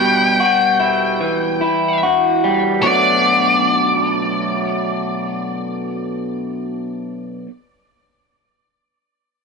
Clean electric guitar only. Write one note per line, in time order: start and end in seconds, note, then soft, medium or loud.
0.00 1.62 B2 medium
0.00 2.03 G3 medium
0.00 0.39 E4 medium
0.00 0.39 F#4 medium
0.40 2.02 F#4 medium
0.80 1.60 E4 medium
1.21 2.84 E3 medium
1.61 2.83 E4 medium
2.03 2.84 F#4 medium
2.44 2.84 G3 medium
2.83 7.46 B2 medium
2.83 7.47 F#3 medium
2.83 7.48 A3 medium
2.83 7.49 D4 medium
2.83 7.50 F#4 medium